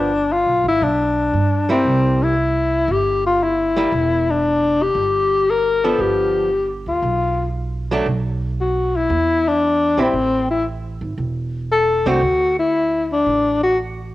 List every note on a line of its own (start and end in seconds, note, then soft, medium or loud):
0.00 0.43 G1 medium
0.00 0.10 F3 medium
0.00 0.11 B3 medium
0.00 0.11 D4 medium
0.00 0.34 D4 medium
0.32 0.67 F4 medium
0.46 0.63 B1 medium
0.64 0.80 G#1 medium
0.68 0.84 E4 loud
0.81 1.30 B1 medium
0.81 1.70 D4 medium
1.34 1.82 G2 medium
1.69 2.34 G3 medium
1.69 2.34 A#3 medium
1.69 2.25 C4 medium
1.69 2.34 E4 medium
1.85 2.85 C2 medium
2.23 2.93 E4 medium
2.88 3.88 G1 medium
2.88 3.26 G4 medium
3.26 3.45 F4 medium
3.43 4.32 E4 medium
3.77 3.91 G3 medium
3.77 3.91 A#3 medium
3.77 3.92 E4 medium
3.92 4.92 E1 medium
4.30 4.84 D4 medium
4.82 5.52 G4 loud
4.95 5.95 G1 medium
5.50 5.86 A#4 medium
5.84 6.49 F3 medium
5.84 6.49 B3 medium
5.84 6.49 D4 medium
5.84 6.02 A4 medium
5.98 6.83 G1 medium
5.98 6.71 G4 medium
6.86 7.02 D2 medium
6.86 7.52 F4 medium
7.02 8.03 B1 medium
7.91 8.06 F#3 medium
7.91 8.06 A3 medium
7.91 8.06 D4 medium
8.06 9.06 B1 medium
8.61 8.98 F#4 medium
8.96 9.49 E4 medium
9.10 9.94 E2 medium
9.48 10.02 D4 medium
9.97 10.13 A#1 medium
9.97 10.13 G3 medium
9.97 10.13 C4 medium
9.97 10.50 C4 medium
9.97 10.13 E4 medium
10.13 10.98 A1 medium
10.50 10.65 E4 medium
11.01 11.17 G#1 medium
11.18 12.02 E1 medium
11.72 12.10 A4 medium
12.06 12.21 C2 medium
12.06 12.21 D3 medium
12.06 12.21 A3 medium
12.06 12.21 C4 medium
12.06 12.21 F#4 medium
12.06 12.58 F#4 medium
12.22 13.22 D2 medium
12.59 13.07 E4 medium
13.12 13.59 D4 medium
13.26 14.15 A1 medium
13.63 13.77 F#4 medium